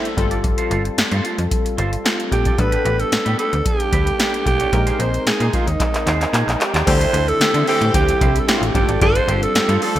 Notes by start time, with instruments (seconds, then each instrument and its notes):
Already playing: analog polysynth G3 D4 E4 C5, alto saxophone A4
0.04 muted clean electric guitar stroke, closed hi-hat
0.17 fm bass G1, analog polysynth G3 C4 F4 A4, muted clean electric guitar stroke, kick, closed hi-hat
0.31 clean electric guitar F4 A4 D5, closed hi-hat
0.43 muted clean electric guitar stroke, kick, closed hi-hat
0.58 clean electric guitar F4 A4 C5, closed hi-hat
0.70 fm bass G1, clean electric guitar F4 A4 C5, closed hi-hat
0.85 muted clean electric guitar stroke, closed hi-hat
0.97 fm bass G2, muted clean electric guitar stroke, snare, closed hi-hat
1.12 fm bass G2, clean electric guitar F4 A4 C5, closed hi-hat
1.24 clean electric guitar F4 A4 C5, closed hi-hat
1.38 fm bass F2, muted clean electric guitar stroke, closed hi-hat
1.51 muted clean electric guitar stroke, kick, closed hi-hat
1.65 muted clean electric guitar stroke, closed hi-hat
1.78 fm bass G1, clean electric guitar F4 A4 C5, closed hi-hat
1.92 muted clean electric guitar stroke, closed hi-hat
2.05 clean electric guitar F4 A4 C5, snare, closed hi-hat
2.19 muted clean electric guitar stroke, closed hi-hat
2.31 fm bass A#1, alto saxophone G4, muted clean electric guitar stroke, kick, closed hi-hat
2.45 clean electric guitar F4 A4 D5, kick, closed hi-hat
2.58 fm bass A1, analog polysynth G3 B3 D4 A4, alto saxophone B4, muted clean electric guitar stroke, kick, closed hi-hat
2.72 clean electric guitar D4 G4 B4, closed hi-hat
2.84 fm bass A1, clean electric guitar D4 G4 B4, closed hi-hat
2.99 alto saxophone A4, muted clean electric guitar stroke, closed hi-hat
3.11 fm bass A2, muted clean electric guitar stroke, snare, closed hi-hat
3.25 fm bass A2, clean electric guitar D4 G4 B4, closed hi-hat
3.38 clean electric guitar D4 G4 B4, alto saxophone A4, closed hi-hat
3.52 fm bass D2, muted clean electric guitar stroke, closed hi-hat
3.65 alto saxophone G4, muted clean electric guitar stroke, kick, closed hi-hat
3.79 muted clean electric guitar stroke, closed hi-hat
3.92 fm bass D2, clean electric guitar D4 G4 B4, kick, closed hi-hat
4.06 muted clean electric guitar stroke, closed hi-hat
4.19 clean electric guitar D4 G4 B4, snare, closed hi-hat
4.33 muted clean electric guitar stroke, closed hi-hat
4.46 fm bass B1, alto saxophone G4, muted clean electric guitar stroke, kick, closed hi-hat
4.60 clean electric guitar D4 G4 C#5, closed hi-hat
4.72 fm bass A#1, analog polysynth G#3 C4 D#4 A#4, kick, closed hi-hat
4.86 clean electric guitar D#4 G#4 C5, closed hi-hat
4.99 fm bass A#1, clean electric guitar D#4 G#4 C5, alto saxophone C5, closed hi-hat
5.14 muted clean electric guitar stroke, closed hi-hat
5.26 fm bass A#2, alto saxophone G#4, muted clean electric guitar stroke, snare, closed hi-hat
5.40 fm bass A#2, clean electric guitar D#4 G#4 C5, closed hi-hat
5.53 clean electric guitar D#4 G#4 C5, alto saxophone F4, kick, closed hi-hat
5.67 fm bass D#2, alto saxophone D#4, muted clean electric guitar stroke, closed hi-hat
5.79 muted clean electric guitar stroke, kick, clap, closed hi-hat
5.94 muted clean electric guitar stroke, clap, closed hi-hat
6.06 fm bass D#2, clean electric guitar D#4 G#4 C5, clap, closed hi-hat
6.21 clean electric guitar D#4 G#4 C5, clap, closed hi-hat
6.33 fm bass A#2, clean electric guitar D#4 G#4 C5, clap, closed hi-hat
6.47 fm bass A#1, muted clean electric guitar stroke, clap, closed hi-hat
6.60 alto saxophone G4, muted clean electric guitar stroke, clap, closed hi-hat
6.74 fm bass D#2, clean electric guitar D#4 G#4 D5, clap, closed hi-hat
6.87 fm bass D2, string machine D3 C4 E4 G4, horn section E3 C4 G4, analog polysynth G3 C4 D4 E4 A4, alto saxophone C5, muted clean electric guitar stroke, kick, closed hi-hat, crash
7.01 clean electric guitar E4 G4 C5, closed hi-hat
7.13 fm bass D2, horn section E3 C4 A4, clean electric guitar E4 G4 C5, closed hi-hat
7.28 alto saxophone A4, muted clean electric guitar stroke, closed hi-hat
7.40 fm bass D3, horn section E3 C4 G4, muted clean electric guitar stroke, snare, closed hi-hat
7.54 fm bass D3, clean electric guitar E4 G4 C5, closed hi-hat
7.67 horn section E3 C4 G4, clean electric guitar E4 G4 C5, alto saxophone A4, open hi-hat
7.81 fm bass A2, muted clean electric guitar stroke, closed hi-hat
7.94 fm bass D2, alto saxophone G4, muted clean electric guitar stroke, kick, closed hi-hat
8.08 muted clean electric guitar stroke, closed hi-hat
8.21 fm bass C2, clean electric guitar E4 G4 C5, kick, closed hi-hat
8.35 alto saxophone A4, muted clean electric guitar stroke, closed hi-hat
8.47 clean electric guitar E4 G4 C5, alto saxophone G4, snare, closed hi-hat
8.58 fm bass A1, alto saxophone F4
8.62 muted clean electric guitar stroke, closed hi-hat
8.67 alto saxophone G4
8.74 fm bass G1, analog polysynth G3 C4 D4 F4 A4, string machine G3 F4, alto saxophone G4, muted clean electric guitar stroke, kick, closed hi-hat
8.89 fm bass G#1, clean electric guitar F4 A4 D5, closed hi-hat
9.01 fm bass G1, horn section F3 D4 A4, alto saxophone C5, muted clean electric guitar stroke, kick, closed hi-hat
9.15 clean electric guitar F4 A4 C5, closed hi-hat
9.28 fm bass G1, horn section D3 C4 G4, clean electric guitar F4 A4 C5, closed hi-hat
9.43 alto saxophone A4, muted clean electric guitar stroke, closed hi-hat
9.55 fm bass G2, horn section D3 C4 G4, snare, closed hi-hat
9.69 fm bass G2, clean electric guitar F4 A4 C5, closed hi-hat
9.82 horn section F3 D4 A4, clean electric guitar F4 A4 C5, alto saxophone A4, open hi-hat
9.96 fm bass D2, muted clean electric guitar stroke, closed hi-hat